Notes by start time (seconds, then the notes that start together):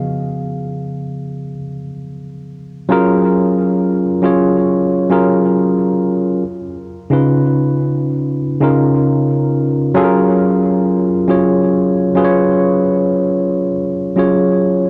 Already playing: C#3 F3 B3 G#4 F5
2.89 F#3 C#4 F4 G#4 A#4
4.22 F#3 C#4 F4 G#4 C#5
5.09 F#3 C#4 F4 G#4 A#4
7.10 C#3 C#4 D#4 F4 B4
8.61 C#3 C#4 D#4 F4 A#4
9.94 F#3 C#4 F4 G#4 A4
10.04 A#4
11.28 F#3 C#4 F4 G#4 C#5
12.15 F#3 C#4 F4 G#4 B4
12.24 C#5
14.16 F#3 C#4 F4 G#4 C#5